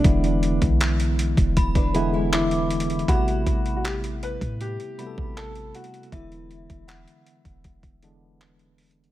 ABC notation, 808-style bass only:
X:1
M:4/4
L:1/16
Q:1/4=79
K:Ador
V:1 name="808-style bass" clef=bass
E,,,3 B,,,4 E,,,8- E,,, | A,,,2 A,,,4- A,,, A,,2 z2 A,,,3 z2 | E,,,3 E,,,2 z2 E,,,8- E,,, |]